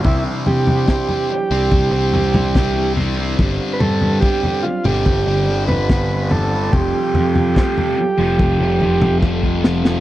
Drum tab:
SD |----o-------o---|------------o---|----o---------oo|
T2 |-----------oo---|--o----o----o---|-----------o----|
FT |o-oo-o--o-oo--o-|o-oo-o--o--o--o-|o-oo-o--o-oo----|
BD |o---o---o---o---|o---o---o---o---|o---o---o---oo--|